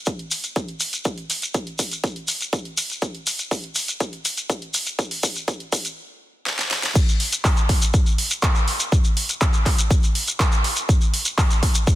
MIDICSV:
0, 0, Header, 1, 3, 480
1, 0, Start_track
1, 0, Tempo, 491803
1, 1028, Time_signature, 4, 2, 24, 8
1, 11666, End_track
2, 0, Start_track
2, 0, Title_t, "Shekere"
2, 55, Note_on_c, 9, 82, 43
2, 152, Note_off_c, 9, 82, 0
2, 304, Note_on_c, 9, 82, 84
2, 401, Note_off_c, 9, 82, 0
2, 424, Note_on_c, 9, 82, 51
2, 522, Note_off_c, 9, 82, 0
2, 545, Note_on_c, 9, 82, 36
2, 642, Note_off_c, 9, 82, 0
2, 780, Note_on_c, 9, 82, 87
2, 877, Note_off_c, 9, 82, 0
2, 908, Note_on_c, 9, 82, 56
2, 1006, Note_off_c, 9, 82, 0
2, 1018, Note_on_c, 9, 82, 40
2, 1115, Note_off_c, 9, 82, 0
2, 1271, Note_on_c, 9, 82, 85
2, 1368, Note_off_c, 9, 82, 0
2, 1391, Note_on_c, 9, 82, 56
2, 1488, Note_off_c, 9, 82, 0
2, 1504, Note_on_c, 9, 82, 38
2, 1601, Note_off_c, 9, 82, 0
2, 1743, Note_on_c, 9, 82, 90
2, 1841, Note_off_c, 9, 82, 0
2, 1877, Note_on_c, 9, 82, 49
2, 1974, Note_off_c, 9, 82, 0
2, 1992, Note_on_c, 9, 82, 38
2, 2090, Note_off_c, 9, 82, 0
2, 2223, Note_on_c, 9, 82, 91
2, 2321, Note_off_c, 9, 82, 0
2, 2355, Note_on_c, 9, 82, 58
2, 2453, Note_off_c, 9, 82, 0
2, 2471, Note_on_c, 9, 82, 40
2, 2568, Note_off_c, 9, 82, 0
2, 2708, Note_on_c, 9, 82, 103
2, 2806, Note_off_c, 9, 82, 0
2, 2840, Note_on_c, 9, 82, 51
2, 2937, Note_off_c, 9, 82, 0
2, 2945, Note_on_c, 9, 82, 39
2, 3043, Note_off_c, 9, 82, 0
2, 3189, Note_on_c, 9, 82, 106
2, 3286, Note_off_c, 9, 82, 0
2, 3305, Note_on_c, 9, 82, 60
2, 3403, Note_off_c, 9, 82, 0
2, 3434, Note_on_c, 9, 82, 45
2, 3532, Note_off_c, 9, 82, 0
2, 3660, Note_on_c, 9, 82, 104
2, 3758, Note_off_c, 9, 82, 0
2, 3791, Note_on_c, 9, 82, 58
2, 3888, Note_off_c, 9, 82, 0
2, 3907, Note_on_c, 9, 82, 39
2, 4005, Note_off_c, 9, 82, 0
2, 4148, Note_on_c, 9, 82, 93
2, 4246, Note_off_c, 9, 82, 0
2, 4267, Note_on_c, 9, 82, 51
2, 4365, Note_off_c, 9, 82, 0
2, 4392, Note_on_c, 9, 82, 45
2, 4490, Note_off_c, 9, 82, 0
2, 4625, Note_on_c, 9, 82, 91
2, 4723, Note_off_c, 9, 82, 0
2, 4746, Note_on_c, 9, 82, 52
2, 4843, Note_off_c, 9, 82, 0
2, 4872, Note_on_c, 9, 82, 40
2, 4970, Note_off_c, 9, 82, 0
2, 5108, Note_on_c, 9, 82, 104
2, 5206, Note_off_c, 9, 82, 0
2, 5229, Note_on_c, 9, 82, 54
2, 5326, Note_off_c, 9, 82, 0
2, 5348, Note_on_c, 9, 82, 41
2, 5446, Note_off_c, 9, 82, 0
2, 5589, Note_on_c, 9, 82, 93
2, 5687, Note_off_c, 9, 82, 0
2, 5710, Note_on_c, 9, 82, 50
2, 5808, Note_off_c, 9, 82, 0
2, 6788, Note_on_c, 9, 82, 61
2, 6885, Note_off_c, 9, 82, 0
2, 6917, Note_on_c, 9, 82, 42
2, 7014, Note_off_c, 9, 82, 0
2, 7150, Note_on_c, 9, 82, 81
2, 7248, Note_off_c, 9, 82, 0
2, 7270, Note_on_c, 9, 82, 65
2, 7367, Note_off_c, 9, 82, 0
2, 7387, Note_on_c, 9, 82, 43
2, 7485, Note_off_c, 9, 82, 0
2, 7634, Note_on_c, 9, 82, 77
2, 7731, Note_off_c, 9, 82, 0
2, 7747, Note_on_c, 9, 82, 62
2, 7845, Note_off_c, 9, 82, 0
2, 7870, Note_on_c, 9, 82, 37
2, 7968, Note_off_c, 9, 82, 0
2, 8106, Note_on_c, 9, 82, 83
2, 8203, Note_off_c, 9, 82, 0
2, 8221, Note_on_c, 9, 82, 69
2, 8318, Note_off_c, 9, 82, 0
2, 8348, Note_on_c, 9, 82, 37
2, 8446, Note_off_c, 9, 82, 0
2, 8586, Note_on_c, 9, 82, 77
2, 8683, Note_off_c, 9, 82, 0
2, 8711, Note_on_c, 9, 82, 60
2, 8809, Note_off_c, 9, 82, 0
2, 8827, Note_on_c, 9, 82, 43
2, 8924, Note_off_c, 9, 82, 0
2, 9072, Note_on_c, 9, 82, 86
2, 9169, Note_off_c, 9, 82, 0
2, 9186, Note_on_c, 9, 82, 68
2, 9284, Note_off_c, 9, 82, 0
2, 9304, Note_on_c, 9, 82, 43
2, 9402, Note_off_c, 9, 82, 0
2, 9550, Note_on_c, 9, 82, 86
2, 9648, Note_off_c, 9, 82, 0
2, 9670, Note_on_c, 9, 82, 66
2, 9768, Note_off_c, 9, 82, 0
2, 9794, Note_on_c, 9, 82, 43
2, 9892, Note_off_c, 9, 82, 0
2, 10030, Note_on_c, 9, 82, 90
2, 10128, Note_off_c, 9, 82, 0
2, 10150, Note_on_c, 9, 82, 67
2, 10248, Note_off_c, 9, 82, 0
2, 10267, Note_on_c, 9, 82, 44
2, 10365, Note_off_c, 9, 82, 0
2, 10503, Note_on_c, 9, 82, 76
2, 10600, Note_off_c, 9, 82, 0
2, 10631, Note_on_c, 9, 82, 65
2, 10729, Note_off_c, 9, 82, 0
2, 10749, Note_on_c, 9, 82, 40
2, 10846, Note_off_c, 9, 82, 0
2, 10983, Note_on_c, 9, 82, 83
2, 11080, Note_off_c, 9, 82, 0
2, 11112, Note_on_c, 9, 82, 67
2, 11209, Note_off_c, 9, 82, 0
2, 11229, Note_on_c, 9, 82, 48
2, 11327, Note_off_c, 9, 82, 0
2, 11465, Note_on_c, 9, 82, 80
2, 11562, Note_off_c, 9, 82, 0
2, 11587, Note_on_c, 9, 82, 65
2, 11666, Note_off_c, 9, 82, 0
2, 11666, End_track
3, 0, Start_track
3, 0, Title_t, "Drums"
3, 67, Note_on_c, 9, 36, 117
3, 67, Note_on_c, 9, 42, 52
3, 164, Note_off_c, 9, 42, 0
3, 165, Note_off_c, 9, 36, 0
3, 188, Note_on_c, 9, 42, 26
3, 286, Note_off_c, 9, 42, 0
3, 306, Note_on_c, 9, 46, 100
3, 404, Note_off_c, 9, 46, 0
3, 427, Note_on_c, 9, 42, 55
3, 525, Note_off_c, 9, 42, 0
3, 546, Note_on_c, 9, 42, 54
3, 547, Note_on_c, 9, 36, 122
3, 644, Note_off_c, 9, 42, 0
3, 645, Note_off_c, 9, 36, 0
3, 668, Note_on_c, 9, 42, 26
3, 766, Note_off_c, 9, 42, 0
3, 786, Note_on_c, 9, 46, 106
3, 884, Note_off_c, 9, 46, 0
3, 907, Note_on_c, 9, 42, 54
3, 1005, Note_off_c, 9, 42, 0
3, 1026, Note_on_c, 9, 42, 54
3, 1028, Note_on_c, 9, 36, 123
3, 1124, Note_off_c, 9, 42, 0
3, 1125, Note_off_c, 9, 36, 0
3, 1147, Note_on_c, 9, 42, 26
3, 1245, Note_off_c, 9, 42, 0
3, 1266, Note_on_c, 9, 46, 105
3, 1364, Note_off_c, 9, 46, 0
3, 1388, Note_on_c, 9, 42, 54
3, 1485, Note_off_c, 9, 42, 0
3, 1507, Note_on_c, 9, 42, 53
3, 1508, Note_on_c, 9, 36, 118
3, 1604, Note_off_c, 9, 42, 0
3, 1605, Note_off_c, 9, 36, 0
3, 1629, Note_on_c, 9, 42, 27
3, 1726, Note_off_c, 9, 42, 0
3, 1747, Note_on_c, 9, 46, 104
3, 1748, Note_on_c, 9, 36, 65
3, 1844, Note_off_c, 9, 46, 0
3, 1846, Note_off_c, 9, 36, 0
3, 1869, Note_on_c, 9, 42, 51
3, 1966, Note_off_c, 9, 42, 0
3, 1987, Note_on_c, 9, 42, 51
3, 1988, Note_on_c, 9, 36, 123
3, 2085, Note_off_c, 9, 42, 0
3, 2086, Note_off_c, 9, 36, 0
3, 2109, Note_on_c, 9, 42, 26
3, 2206, Note_off_c, 9, 42, 0
3, 2226, Note_on_c, 9, 46, 102
3, 2324, Note_off_c, 9, 46, 0
3, 2349, Note_on_c, 9, 42, 52
3, 2446, Note_off_c, 9, 42, 0
3, 2467, Note_on_c, 9, 42, 53
3, 2468, Note_on_c, 9, 36, 126
3, 2565, Note_off_c, 9, 42, 0
3, 2566, Note_off_c, 9, 36, 0
3, 2589, Note_on_c, 9, 42, 25
3, 2687, Note_off_c, 9, 42, 0
3, 2708, Note_on_c, 9, 46, 105
3, 2805, Note_off_c, 9, 46, 0
3, 2829, Note_on_c, 9, 42, 53
3, 2927, Note_off_c, 9, 42, 0
3, 2948, Note_on_c, 9, 36, 101
3, 2948, Note_on_c, 9, 42, 52
3, 3046, Note_off_c, 9, 36, 0
3, 3046, Note_off_c, 9, 42, 0
3, 3070, Note_on_c, 9, 42, 25
3, 3168, Note_off_c, 9, 42, 0
3, 3189, Note_on_c, 9, 46, 114
3, 3286, Note_off_c, 9, 46, 0
3, 3310, Note_on_c, 9, 42, 51
3, 3408, Note_off_c, 9, 42, 0
3, 3428, Note_on_c, 9, 36, 100
3, 3429, Note_on_c, 9, 46, 64
3, 3526, Note_off_c, 9, 36, 0
3, 3526, Note_off_c, 9, 46, 0
3, 3550, Note_on_c, 9, 42, 26
3, 3647, Note_off_c, 9, 42, 0
3, 3667, Note_on_c, 9, 46, 108
3, 3765, Note_off_c, 9, 46, 0
3, 3789, Note_on_c, 9, 42, 52
3, 3887, Note_off_c, 9, 42, 0
3, 3908, Note_on_c, 9, 36, 106
3, 3908, Note_on_c, 9, 42, 49
3, 4006, Note_off_c, 9, 36, 0
3, 4006, Note_off_c, 9, 42, 0
3, 4030, Note_on_c, 9, 42, 25
3, 4127, Note_off_c, 9, 42, 0
3, 4148, Note_on_c, 9, 46, 111
3, 4245, Note_off_c, 9, 46, 0
3, 4270, Note_on_c, 9, 42, 54
3, 4367, Note_off_c, 9, 42, 0
3, 4388, Note_on_c, 9, 36, 110
3, 4388, Note_on_c, 9, 42, 52
3, 4485, Note_off_c, 9, 36, 0
3, 4486, Note_off_c, 9, 42, 0
3, 4509, Note_on_c, 9, 42, 26
3, 4607, Note_off_c, 9, 42, 0
3, 4627, Note_on_c, 9, 46, 111
3, 4725, Note_off_c, 9, 46, 0
3, 4749, Note_on_c, 9, 42, 51
3, 4846, Note_off_c, 9, 42, 0
3, 4867, Note_on_c, 9, 42, 51
3, 4868, Note_on_c, 9, 36, 104
3, 4965, Note_off_c, 9, 36, 0
3, 4965, Note_off_c, 9, 42, 0
3, 4988, Note_on_c, 9, 46, 65
3, 5086, Note_off_c, 9, 46, 0
3, 5107, Note_on_c, 9, 46, 113
3, 5108, Note_on_c, 9, 36, 102
3, 5205, Note_off_c, 9, 36, 0
3, 5205, Note_off_c, 9, 46, 0
3, 5229, Note_on_c, 9, 42, 50
3, 5326, Note_off_c, 9, 42, 0
3, 5347, Note_on_c, 9, 42, 51
3, 5348, Note_on_c, 9, 36, 104
3, 5444, Note_off_c, 9, 42, 0
3, 5445, Note_off_c, 9, 36, 0
3, 5468, Note_on_c, 9, 42, 25
3, 5566, Note_off_c, 9, 42, 0
3, 5587, Note_on_c, 9, 46, 108
3, 5588, Note_on_c, 9, 36, 110
3, 5684, Note_off_c, 9, 46, 0
3, 5685, Note_off_c, 9, 36, 0
3, 5709, Note_on_c, 9, 42, 51
3, 5806, Note_off_c, 9, 42, 0
3, 6307, Note_on_c, 9, 38, 62
3, 6405, Note_off_c, 9, 38, 0
3, 6429, Note_on_c, 9, 38, 64
3, 6526, Note_off_c, 9, 38, 0
3, 6547, Note_on_c, 9, 38, 90
3, 6645, Note_off_c, 9, 38, 0
3, 6669, Note_on_c, 9, 38, 87
3, 6767, Note_off_c, 9, 38, 0
3, 6787, Note_on_c, 9, 36, 122
3, 6788, Note_on_c, 9, 42, 57
3, 6788, Note_on_c, 9, 49, 106
3, 6885, Note_off_c, 9, 36, 0
3, 6885, Note_off_c, 9, 42, 0
3, 6885, Note_off_c, 9, 49, 0
3, 6910, Note_on_c, 9, 42, 28
3, 7007, Note_off_c, 9, 42, 0
3, 7027, Note_on_c, 9, 46, 107
3, 7125, Note_off_c, 9, 46, 0
3, 7149, Note_on_c, 9, 42, 56
3, 7246, Note_off_c, 9, 42, 0
3, 7267, Note_on_c, 9, 36, 116
3, 7267, Note_on_c, 9, 46, 62
3, 7268, Note_on_c, 9, 39, 121
3, 7365, Note_off_c, 9, 36, 0
3, 7365, Note_off_c, 9, 39, 0
3, 7365, Note_off_c, 9, 46, 0
3, 7389, Note_on_c, 9, 42, 29
3, 7487, Note_off_c, 9, 42, 0
3, 7507, Note_on_c, 9, 36, 66
3, 7507, Note_on_c, 9, 46, 106
3, 7605, Note_off_c, 9, 36, 0
3, 7605, Note_off_c, 9, 46, 0
3, 7628, Note_on_c, 9, 42, 55
3, 7726, Note_off_c, 9, 42, 0
3, 7747, Note_on_c, 9, 36, 121
3, 7747, Note_on_c, 9, 42, 53
3, 7844, Note_off_c, 9, 42, 0
3, 7845, Note_off_c, 9, 36, 0
3, 7869, Note_on_c, 9, 42, 27
3, 7967, Note_off_c, 9, 42, 0
3, 7988, Note_on_c, 9, 46, 106
3, 8085, Note_off_c, 9, 46, 0
3, 8109, Note_on_c, 9, 42, 57
3, 8207, Note_off_c, 9, 42, 0
3, 8227, Note_on_c, 9, 42, 56
3, 8228, Note_on_c, 9, 36, 120
3, 8228, Note_on_c, 9, 39, 122
3, 8325, Note_off_c, 9, 36, 0
3, 8325, Note_off_c, 9, 42, 0
3, 8326, Note_off_c, 9, 39, 0
3, 8350, Note_on_c, 9, 42, 28
3, 8447, Note_off_c, 9, 42, 0
3, 8468, Note_on_c, 9, 46, 110
3, 8566, Note_off_c, 9, 46, 0
3, 8589, Note_on_c, 9, 42, 57
3, 8687, Note_off_c, 9, 42, 0
3, 8708, Note_on_c, 9, 36, 121
3, 8709, Note_on_c, 9, 42, 57
3, 8805, Note_off_c, 9, 36, 0
3, 8806, Note_off_c, 9, 42, 0
3, 8830, Note_on_c, 9, 42, 28
3, 8928, Note_off_c, 9, 42, 0
3, 8948, Note_on_c, 9, 46, 116
3, 9046, Note_off_c, 9, 46, 0
3, 9069, Note_on_c, 9, 42, 55
3, 9167, Note_off_c, 9, 42, 0
3, 9188, Note_on_c, 9, 36, 124
3, 9189, Note_on_c, 9, 42, 52
3, 9190, Note_on_c, 9, 39, 118
3, 9285, Note_off_c, 9, 36, 0
3, 9286, Note_off_c, 9, 42, 0
3, 9287, Note_off_c, 9, 39, 0
3, 9311, Note_on_c, 9, 42, 26
3, 9409, Note_off_c, 9, 42, 0
3, 9428, Note_on_c, 9, 36, 66
3, 9429, Note_on_c, 9, 46, 109
3, 9430, Note_on_c, 9, 39, 39
3, 9525, Note_off_c, 9, 36, 0
3, 9526, Note_off_c, 9, 46, 0
3, 9527, Note_off_c, 9, 39, 0
3, 9550, Note_on_c, 9, 42, 55
3, 9648, Note_off_c, 9, 42, 0
3, 9668, Note_on_c, 9, 36, 127
3, 9668, Note_on_c, 9, 42, 52
3, 9765, Note_off_c, 9, 36, 0
3, 9766, Note_off_c, 9, 42, 0
3, 9790, Note_on_c, 9, 42, 27
3, 9887, Note_off_c, 9, 42, 0
3, 9908, Note_on_c, 9, 46, 108
3, 10006, Note_off_c, 9, 46, 0
3, 10030, Note_on_c, 9, 42, 54
3, 10127, Note_off_c, 9, 42, 0
3, 10148, Note_on_c, 9, 36, 127
3, 10148, Note_on_c, 9, 42, 53
3, 10149, Note_on_c, 9, 39, 121
3, 10245, Note_off_c, 9, 36, 0
3, 10246, Note_off_c, 9, 42, 0
3, 10247, Note_off_c, 9, 39, 0
3, 10270, Note_on_c, 9, 42, 28
3, 10368, Note_off_c, 9, 42, 0
3, 10388, Note_on_c, 9, 46, 110
3, 10486, Note_off_c, 9, 46, 0
3, 10510, Note_on_c, 9, 42, 53
3, 10607, Note_off_c, 9, 42, 0
3, 10628, Note_on_c, 9, 36, 123
3, 10628, Note_on_c, 9, 42, 54
3, 10725, Note_off_c, 9, 36, 0
3, 10726, Note_off_c, 9, 42, 0
3, 10750, Note_on_c, 9, 42, 27
3, 10847, Note_off_c, 9, 42, 0
3, 10869, Note_on_c, 9, 46, 116
3, 10966, Note_off_c, 9, 46, 0
3, 10991, Note_on_c, 9, 42, 53
3, 11088, Note_off_c, 9, 42, 0
3, 11108, Note_on_c, 9, 36, 125
3, 11109, Note_on_c, 9, 46, 66
3, 11110, Note_on_c, 9, 39, 122
3, 11205, Note_off_c, 9, 36, 0
3, 11207, Note_off_c, 9, 46, 0
3, 11208, Note_off_c, 9, 39, 0
3, 11230, Note_on_c, 9, 42, 26
3, 11328, Note_off_c, 9, 42, 0
3, 11348, Note_on_c, 9, 36, 68
3, 11348, Note_on_c, 9, 46, 108
3, 11445, Note_off_c, 9, 36, 0
3, 11446, Note_off_c, 9, 46, 0
3, 11470, Note_on_c, 9, 42, 53
3, 11568, Note_off_c, 9, 42, 0
3, 11587, Note_on_c, 9, 36, 127
3, 11588, Note_on_c, 9, 42, 51
3, 11666, Note_off_c, 9, 36, 0
3, 11666, Note_off_c, 9, 42, 0
3, 11666, End_track
0, 0, End_of_file